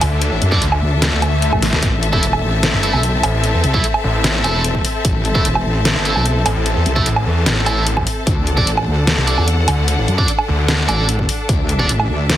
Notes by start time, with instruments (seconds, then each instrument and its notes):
Already playing: string section D4 A4 E5 A5
0.01 detuned saw bass D2, open hi-hat, low woodblock
0.12 detuned saw bass D2
0.22 closed hi-hat
0.32 detuned saw bass A1
0.42 wobble bass F#2, closed hi-hat
0.52 distorted electric guitar D4 A4 D5, kick, snare
0.62 detuned saw bass D2, closed hi-hat
0.72 low woodblock
0.82 wobble bass D2
1.02 snare, closed hi-hat, swell
1.12 detuned saw bass D2
1.22 closed hi-hat, low woodblock
1.42 closed hi-hat
1.53 wobble bass A1, kick, low woodblock
1.62 snare, open hi-hat
1.73 wobble bass D2, snare, closed hi-hat
1.82 wobble bass A1, string section C4, kick, closed hi-hat
2.03 closed hi-hat
2.13 distorted electric guitar A3 E4 A4, kick
2.23 wobble bass E1, closed hi-hat
2.33 low woodblock
2.43 wobble bass A1
2.63 snare, closed hi-hat
2.73 detuned saw bass G1
2.83 distorted electric guitar A3 E4 A4, closed hi-hat
2.93 wobble bass B1, low woodblock
3.03 closed hi-hat
3.23 detuned saw bass A1, open hi-hat, low woodblock
3.34 detuned saw bass A1
3.44 closed hi-hat
3.54 detuned saw bass E2
3.64 wobble bass C2, closed hi-hat
3.74 distorted electric guitar A3 E4 A4, kick
3.84 closed hi-hat
3.94 low woodblock
4.04 detuned saw bass A1
4.24 snare, closed hi-hat
4.44 wobble bass E1, distorted electric guitar A3 E4 A4, closed hi-hat, low woodblock
4.64 closed hi-hat
4.75 kick
4.85 open hi-hat
5.05 wobble bass A1, kick, closed hi-hat
5.25 closed hi-hat
5.35 distorted electric guitar A3 E4 A4, kick
5.45 wobble bass E1, closed hi-hat
5.55 low woodblock
5.65 wobble bass A1
5.85 snare, closed hi-hat
5.96 detuned saw bass G1
6.05 distorted electric guitar A3 E4 A4, closed hi-hat
6.16 wobble bass B1, low woodblock
6.26 closed hi-hat
6.46 detuned saw bass A1, open hi-hat, low woodblock
6.56 detuned saw bass A1
6.66 closed hi-hat
6.76 detuned saw bass E2
6.86 wobble bass C2, closed hi-hat
6.96 distorted electric guitar A3 E4 A4, kick
7.06 detuned saw bass A1, closed hi-hat
7.16 low woodblock
7.26 detuned saw bass E2
7.46 detuned saw bass A1, snare, closed hi-hat
7.66 distorted electric guitar A3 E4 A4, closed hi-hat, low woodblock
7.87 closed hi-hat
7.97 kick, low woodblock
8.07 open hi-hat
8.27 wobble bass D2, string section D4, kick, closed hi-hat
8.47 string section F#5, closed hi-hat
8.57 distorted electric guitar D4 A4 D5, kick
8.67 wobble bass A1, closed hi-hat
8.77 low woodblock
8.87 wobble bass D2
9.07 snare, closed hi-hat
9.18 detuned saw bass C2
9.27 distorted electric guitar D4 A4 D5, closed hi-hat
9.38 wobble bass E2, low woodblock
9.48 closed hi-hat
9.68 detuned saw bass D2, open hi-hat, low woodblock
9.78 detuned saw bass D2
9.88 closed hi-hat
9.98 detuned saw bass A1
10.08 wobble bass F#2, closed hi-hat
10.18 distorted electric guitar D4 A4 D5, kick
10.28 closed hi-hat
10.39 low woodblock
10.48 detuned saw bass D2
10.68 snare, closed hi-hat
10.88 wobble bass A1, distorted electric guitar D4 A4 D5, closed hi-hat, low woodblock
11.09 closed hi-hat
11.19 kick
11.29 open hi-hat
11.48 wobble bass D2, string section E5, kick, closed hi-hat
11.69 closed hi-hat
11.79 distorted electric guitar D4 A4 D5, kick
11.89 wobble bass A1, closed hi-hat
12.00 low woodblock
12.09 wobble bass D2
12.30 snare, closed hi-hat